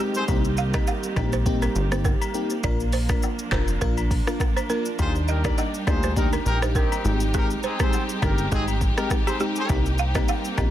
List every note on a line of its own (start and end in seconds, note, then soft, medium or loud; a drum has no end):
0.00 2.60 D#3 medium
0.00 0.24 G3 medium
0.00 0.19 G#3 medium
0.00 0.26 G#3 medium
0.00 0.19 C4 medium
0.00 0.26 C4 medium
0.00 0.19 D#4 medium
0.00 0.19 G4 medium
0.00 2.60 G4 medium
0.15 0.23 C4 medium
0.15 0.23 G#4 medium
0.15 0.23 C5 loud
0.15 shaker medium
0.28 0.80 C2 loud
0.28 2.61 G3 medium
0.28 0.48 A#3 medium
0.28 7.01 A#3 medium
0.28 0.48 C4 medium
0.28 2.61 C4 medium
0.28 0.49 D#4 medium
0.28 0.49 G4 loud
0.28 kick loud
0.28 high agogo medium
0.28 shaker medium
0.45 shaker medium
0.57 0.66 F5 medium
0.57 shaker soft
0.74 0.92 A#3 medium
0.74 0.92 C4 medium
0.74 0.92 D#4 medium
0.74 0.92 G4 medium
0.74 0.82 D#5 medium
0.74 kick loud
0.74 cross-stick loud
0.74 high agogo medium
0.74 shaker medium
0.87 0.96 F5 medium
0.87 low woodblock medium
0.87 shaker medium
1.04 shaker medium
1.16 1.68 A#1 medium
1.16 1.37 A#3 medium
1.16 1.37 C4 medium
1.16 1.37 D#4 medium
1.16 1.37 G4 medium
1.16 1.25 D#5 medium
1.16 kick loud
1.16 cross-stick loud
1.16 high agogo medium
1.16 shaker medium
1.32 1.41 C5 medium
1.32 shaker medium
1.46 1.66 A#3 loud
1.46 1.66 C4 medium
1.46 1.66 D#4 medium
1.46 1.66 G4 loud
1.46 kick medium
1.46 shaker medium
1.62 1.70 A#4 medium
1.62 high agogo medium
1.62 shaker medium
1.75 2.15 G1 loud
1.75 shaker medium
1.91 2.10 A#3 medium
1.91 2.10 C4 medium
1.91 2.10 D#4 medium
1.91 2.10 G4 medium
1.91 2.00 C5 medium
1.91 cross-stick loud
1.91 shaker medium
2.05 2.13 A#4 medium
2.05 kick medium
2.05 low woodblock medium
2.05 shaker medium
2.21 high agogo medium
2.21 shaker medium
2.34 2.54 A#3 medium
2.34 2.54 C4 medium
2.34 2.54 D#4 medium
2.34 2.55 G4 medium
2.34 shaker medium
2.50 shaker medium
2.63 3.15 A#1 loud
2.63 4.97 F3 medium
2.63 2.84 A#3 medium
2.63 2.84 D4 medium
2.63 7.01 D4 medium
2.63 2.84 F4 medium
2.63 2.84 A#4 loud
2.63 2.72 D5 loud
2.63 kick loud
2.63 high agogo medium
2.63 shaker medium
2.80 shaker medium
2.93 3.01 C5 medium
2.93 open hi-hat soft
2.93 shaker soft
3.09 3.27 A#3 medium
3.09 3.27 D4 medium
3.09 3.27 F4 medium
3.09 3.28 A#4 medium
3.09 kick loud
3.09 cross-stick loud
3.09 high agogo medium
3.09 shaker medium
3.23 low woodblock medium
3.23 shaker medium
3.39 shaker medium
3.52 3.78 F1 loud
3.52 3.72 A#3 medium
3.52 3.72 D4 medium
3.52 3.72 F4 medium
3.52 3.72 A#4 medium
3.52 3.60 C5 medium
3.52 kick loud
3.52 cross-stick medium
3.52 clap loud
3.52 high agogo medium
3.52 shaker soft
3.68 shaker medium
3.81 4.21 A#1 loud
3.81 4.01 A#3 loud
3.81 4.02 D4 medium
3.81 4.02 F4 medium
3.81 3.90 A#4 medium
3.81 4.02 A#4 loud
3.81 kick loud
3.81 shaker medium
3.98 high agogo medium
3.98 shaker medium
4.11 kick medium
4.11 open hi-hat medium
4.11 shaker medium
4.27 4.45 A#3 medium
4.27 4.45 D4 medium
4.27 4.45 F4 medium
4.27 4.45 A#4 medium
4.27 cross-stick loud
4.27 shaker medium
4.40 kick medium
4.40 cross-stick loud
4.40 low woodblock medium
4.40 shaker medium
4.57 4.65 C5 medium
4.57 high agogo medium
4.57 shaker medium
4.69 4.90 A#3 medium
4.69 4.90 D4 medium
4.69 4.90 F4 medium
4.69 4.80 A#4 medium
4.69 4.90 A#4 medium
4.69 shaker soft
4.85 shaker medium
4.99 5.50 D#2 loud
4.99 7.03 G3 medium
4.99 5.19 A#3 medium
4.99 5.19 D4 medium
4.99 10.71 D#4 medium
4.99 5.19 D#4 medium
4.99 5.12 F4 loud
4.99 10.71 G4 medium
4.99 5.19 G4 loud
4.99 5.12 G#4 loud
4.99 5.12 C5 loud
4.99 kick loud
4.99 high agogo medium
4.99 shaker medium
5.15 shaker medium
5.28 5.41 D#4 medium
5.28 5.41 G4 medium
5.28 5.41 A#4 medium
5.28 5.37 D#5 medium
5.28 shaker soft
5.44 5.63 A#3 medium
5.44 5.63 D4 medium
5.44 5.63 D#4 medium
5.44 5.68 G4 medium
5.44 5.63 G4 medium
5.44 5.68 A#4 medium
5.44 5.68 D5 loud
5.44 5.53 D5 medium
5.44 kick medium
5.44 cross-stick loud
5.44 high agogo medium
5.44 shaker medium
5.58 5.68 D#5 medium
5.58 low woodblock medium
5.58 shaker medium
5.74 shaker medium
5.87 6.39 D2 medium
5.87 6.07 A#3 medium
5.87 6.07 D4 medium
5.87 6.08 D#4 medium
5.87 6.11 F4 medium
5.87 6.08 G4 medium
5.87 6.11 G#4 medium
5.87 6.11 C5 loud
5.87 5.95 D5 medium
5.87 kick loud
5.87 cross-stick loud
5.87 high agogo medium
5.87 shaker soft
6.03 6.12 C5 medium
6.03 shaker medium
6.16 6.37 A#3 loud
6.16 6.37 D4 medium
6.16 6.30 D#4 medium
6.16 6.37 D#4 medium
6.16 6.30 G4 medium
6.16 6.37 G4 loud
6.16 6.29 A#4 medium
6.16 kick loud
6.16 shaker medium
6.33 6.41 A#4 medium
6.33 high agogo medium
6.33 shaker medium
6.46 6.86 A#1 medium
6.46 6.59 D#4 loud
6.46 6.59 G4 loud
6.46 6.59 A#4 loud
6.46 shaker medium
6.62 6.80 A#3 medium
6.62 6.80 D4 medium
6.62 6.81 D#4 medium
6.62 6.81 G4 medium
6.62 6.71 C5 medium
6.62 cross-stick loud
6.62 shaker medium
6.75 7.18 C4 medium
6.75 7.18 D#4 medium
6.75 7.18 G4 medium
6.75 6.94 A#4 medium
6.75 kick medium
6.75 low woodblock medium
6.75 shaker medium
6.92 high agogo medium
6.92 shaker medium
7.05 7.56 G#1 loud
7.05 9.67 G3 medium
7.05 7.25 G#3 medium
7.05 9.67 G#3 medium
7.05 7.25 C4 medium
7.05 9.67 C4 medium
7.05 7.25 D#4 medium
7.05 7.25 G4 medium
7.05 shaker soft
7.20 shaker medium
7.34 7.54 G#3 loud
7.34 7.54 C4 medium
7.34 7.47 D#4 loud
7.34 7.54 D#4 medium
7.34 7.47 G4 loud
7.34 7.55 G4 loud
7.34 7.43 G#4 loud
7.34 7.47 A#4 loud
7.34 kick loud
7.34 high agogo medium
7.34 shaker medium
7.50 shaker medium
7.63 7.77 C4 medium
7.63 7.77 D#4 medium
7.63 7.77 G#4 medium
7.63 7.72 C5 medium
7.63 shaker soft
7.80 7.98 G#3 medium
7.80 7.98 C4 medium
7.80 8.03 C4 medium
7.80 7.98 D#4 medium
7.80 7.98 G4 medium
7.80 8.04 G#4 medium
7.80 8.03 C5 loud
7.80 kick medium
7.80 cross-stick loud
7.80 high agogo medium
7.80 shaker medium
7.93 low woodblock medium
7.93 shaker medium
8.09 shaker medium
8.22 8.48 G1 loud
8.22 8.43 G#3 medium
8.22 8.43 C4 medium
8.22 8.46 D#4 medium
8.22 8.43 D#4 medium
8.22 8.46 G4 medium
8.22 8.43 G4 medium
8.22 8.46 A#4 medium
8.22 8.31 A#4 medium
8.22 kick loud
8.22 cross-stick loud
8.22 high agogo medium
8.22 shaker soft
8.38 shaker medium
8.52 8.92 G#1 loud
8.52 8.72 G#3 loud
8.52 8.72 C4 medium
8.52 8.65 C4 medium
8.52 8.72 D#4 medium
8.52 8.65 D#4 medium
8.52 8.72 G4 loud
8.52 8.65 G#4 loud
8.52 8.60 G#4 medium
8.52 kick loud
8.52 shaker medium
8.68 high agogo medium
8.68 shaker medium
8.81 kick medium
8.81 shaker medium
8.97 9.16 G#3 medium
8.97 9.16 C4 medium
8.97 9.16 D#4 medium
8.97 9.08 D#4 medium
8.97 9.08 G4 medium
8.97 9.16 G4 medium
8.97 9.08 A#4 medium
8.97 cross-stick loud
8.97 shaker medium
9.10 kick medium
9.10 cross-stick loud
9.10 low woodblock medium
9.10 shaker medium
9.27 9.38 C4 medium
9.27 9.35 G4 medium
9.27 9.38 G#4 medium
9.27 9.38 C5 medium
9.27 high agogo medium
9.27 shaker medium
9.40 9.60 G#3 medium
9.40 9.60 C4 medium
9.40 9.60 D#4 medium
9.40 9.60 G4 medium
9.40 9.49 G4 medium
9.40 shaker soft
9.56 9.67 C4 medium
9.56 9.67 G#4 medium
9.56 9.67 C5 loud
9.56 shaker medium
9.69 10.21 C2 loud
9.69 10.71 G3 medium
9.69 9.90 A#3 loud
9.69 10.71 A#3 medium
9.69 9.90 C4 medium
9.69 10.71 C4 medium
9.69 9.90 D#4 medium
9.69 9.90 G4 loud
9.69 kick loud
9.69 high agogo medium
9.69 shaker medium
9.86 shaker medium
9.98 10.07 F5 medium
9.98 shaker soft
10.15 10.33 A#3 medium
10.15 10.33 C4 medium
10.15 10.33 D#4 medium
10.15 10.33 G4 medium
10.15 10.23 D#5 medium
10.15 kick medium
10.15 cross-stick loud
10.15 high agogo medium
10.15 shaker medium
10.28 10.37 F5 medium
10.28 low woodblock medium
10.28 shaker medium
10.45 shaker medium
10.57 10.71 A#1 medium
10.57 10.71 A#3 medium
10.57 10.71 C4 medium
10.57 10.71 D#4 medium
10.57 10.71 G4 medium
10.57 10.66 D#5 medium
10.57 kick loud
10.57 cross-stick loud
10.57 high agogo medium
10.57 shaker soft